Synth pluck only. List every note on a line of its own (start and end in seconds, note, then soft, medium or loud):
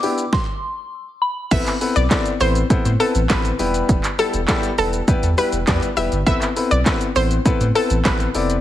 1.51 1.73 E5 loud
1.96 2.18 D5 medium
2.41 2.52 C5 medium
3.00 3.11 A4 medium
3.30 3.72 B4 medium
4.19 4.30 A4 medium
4.78 4.89 A4 medium
5.38 5.60 B4 medium
5.67 5.78 D5 medium
5.97 6.08 E5 medium
6.26 6.49 E5 loud
6.71 6.93 D5 medium
7.16 7.27 C5 medium
7.75 7.86 A4 medium
8.05 8.47 B4 medium